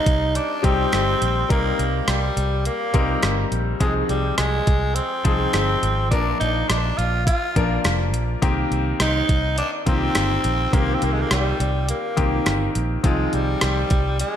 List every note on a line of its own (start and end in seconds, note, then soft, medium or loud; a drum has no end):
0.00 0.25 G3 medium
0.00 0.25 C4 medium
0.00 0.25 D#4 medium
0.00 0.37 D#4 loud
0.00 0.26 A#4 medium
0.06 0.37 C2 medium
0.06 kick medium
0.06 closed hi-hat medium
0.35 0.66 D4 medium
0.35 closed hi-hat medium
0.63 0.85 C2 medium
0.63 1.42 G3 medium
0.63 1.43 C4 medium
0.63 1.51 C4 loud
0.63 1.43 D#4 medium
0.63 1.43 G4 medium
0.63 kick medium
0.63 closed hi-hat medium
0.93 1.13 G1 medium
0.93 cross-stick loud
0.93 closed hi-hat medium
1.22 1.42 A#1 medium
1.22 closed hi-hat medium
1.49 1.71 C2 medium
1.49 2.55 G3 medium
1.49 2.10 A#3 medium
1.49 2.56 C4 medium
1.49 2.56 D#4 medium
1.49 2.56 A#4 medium
1.49 kick loud
1.49 closed hi-hat medium
1.79 2.00 C2 medium
1.79 closed hi-hat medium
2.08 2.29 C2 medium
2.08 2.66 G3 medium
2.08 cross-stick loud
2.08 closed hi-hat medium
2.37 2.68 C2 medium
2.37 closed hi-hat medium
2.65 3.48 A#3 medium
2.65 closed hi-hat medium
2.94 3.15 C2 medium
2.94 3.73 G3 medium
2.94 3.73 C4 medium
2.94 3.74 D#4 medium
2.94 3.74 A#4 medium
2.94 kick medium
2.94 closed hi-hat medium
3.23 3.44 G1 medium
3.23 cross-stick loud
3.23 closed hi-hat medium
3.52 3.73 A#1 medium
3.52 closed hi-hat medium
3.80 4.01 C2 loud
3.80 4.86 F3 medium
3.80 3.94 G#3 medium
3.80 4.86 C4 medium
3.80 4.87 D#4 medium
3.80 4.87 G#4 medium
3.80 kick medium
3.80 closed hi-hat medium
4.09 4.30 C2 medium
4.09 4.37 G3 medium
4.09 closed hi-hat medium
4.38 4.59 C2 medium
4.38 4.97 G#3 medium
4.38 cross-stick loud
4.38 closed hi-hat medium
4.67 4.99 C2 medium
4.67 kick medium
4.67 closed hi-hat medium
4.95 6.10 C4 medium
4.95 closed hi-hat medium
5.24 5.46 C2 medium
5.24 6.04 F3 medium
5.24 6.04 C4 medium
5.24 6.04 D#4 medium
5.24 6.05 G#4 medium
5.24 kick medium
5.24 closed hi-hat medium
5.53 5.75 G1 medium
5.53 cross-stick loud
5.53 closed hi-hat medium
5.83 6.11 G#1 medium
5.83 closed hi-hat medium
6.11 6.32 A#1 loud
6.11 7.17 F3 medium
6.11 7.18 A#3 medium
6.11 6.38 D4 medium
6.11 7.18 D4 medium
6.11 7.18 A#4 medium
6.11 kick loud
6.11 closed hi-hat medium
6.40 6.62 A#1 medium
6.40 6.70 D#4 medium
6.40 closed hi-hat medium
6.69 6.90 A#1 medium
6.69 6.99 D4 medium
6.69 cross-stick loud
6.69 closed hi-hat medium
6.98 7.30 A#1 medium
6.98 7.26 F4 medium
6.98 closed hi-hat medium
7.27 7.81 F4 medium
7.27 kick medium
7.27 closed hi-hat medium
7.56 7.77 A#1 medium
7.56 8.35 F3 medium
7.56 8.35 A#3 medium
7.56 8.36 D4 medium
7.56 8.36 A#4 medium
7.56 kick medium
7.56 closed hi-hat medium
7.84 8.14 F1 medium
7.84 cross-stick loud
7.84 closed hi-hat medium
8.14 8.35 A#1 medium
8.14 closed hi-hat medium
8.42 8.63 C2 loud
8.42 9.48 D#3 medium
8.42 9.48 A#3 medium
8.42 9.48 C4 medium
8.42 9.48 G4 medium
8.42 kick medium
8.42 closed hi-hat medium
8.71 8.92 C2 medium
8.71 closed hi-hat medium
9.00 9.21 C2 medium
9.00 9.55 D#4 loud
9.00 cross-stick loud
9.00 closed hi-hat medium
9.29 9.60 C2 medium
9.29 kick medium
9.29 closed hi-hat medium
9.58 9.71 D4 medium
9.58 closed hi-hat medium
9.86 10.08 C2 medium
9.86 10.66 D#3 medium
9.86 10.66 A#3 medium
9.86 10.66 C4 medium
9.86 10.76 C4 loud
9.86 9.94 F4 medium
9.86 kick medium
9.86 closed hi-hat medium
9.94 10.70 G4 medium
10.15 10.36 G1 medium
10.15 cross-stick loud
10.15 closed hi-hat medium
10.44 10.65 A#1 medium
10.44 closed hi-hat medium
10.72 10.94 C2 medium
10.72 11.79 D#3 medium
10.72 11.79 A#3 medium
10.72 10.96 A#3 medium
10.72 11.79 C4 medium
10.72 11.79 G4 medium
10.72 kick loud
10.72 closed hi-hat medium
10.95 11.06 C4 medium
11.02 11.23 C2 medium
11.02 11.15 A#3 medium
11.02 closed hi-hat medium
11.13 11.23 G#3 medium
11.22 11.31 A#3 medium
11.31 11.52 C2 medium
11.31 11.85 G3 medium
11.31 cross-stick loud
11.31 closed hi-hat medium
11.60 11.91 C2 loud
11.60 closed hi-hat medium
11.89 12.72 A#3 medium
11.89 closed hi-hat medium
12.17 12.39 C2 medium
12.17 12.96 D#3 medium
12.17 12.97 A#3 medium
12.17 12.97 C4 medium
12.17 12.97 G4 medium
12.17 kick medium
12.17 closed hi-hat medium
12.46 12.67 G1 medium
12.46 cross-stick loud
12.46 closed hi-hat medium
12.75 12.96 A#1 medium
12.75 closed hi-hat medium
13.03 13.25 C2 loud
13.03 14.09 D#3 medium
13.03 14.10 F3 medium
13.03 13.36 G#3 medium
13.03 14.10 C4 medium
13.03 14.10 F4 medium
13.03 kick loud
13.03 closed hi-hat medium
13.33 13.54 C2 medium
13.33 14.20 G3 medium
13.33 closed hi-hat medium
13.61 13.83 C2 medium
13.61 cross-stick loud
13.61 closed hi-hat medium
13.90 14.22 C2 medium
13.90 kick medium
13.90 closed hi-hat medium
14.19 14.36 G#3 medium
14.19 closed hi-hat medium